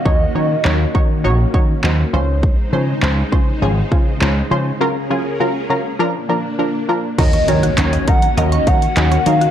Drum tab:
CC |----------------|----------------|----------------|x---------------|
HH |----------------|----------------|----------------|xxxxxxxxxxxxxxxx|
CP |----x-------x---|----x-------x---|----------------|----x-------x---|
BD |o-----o---o-----|o-----o---o-----|----------------|o-----o---o-----|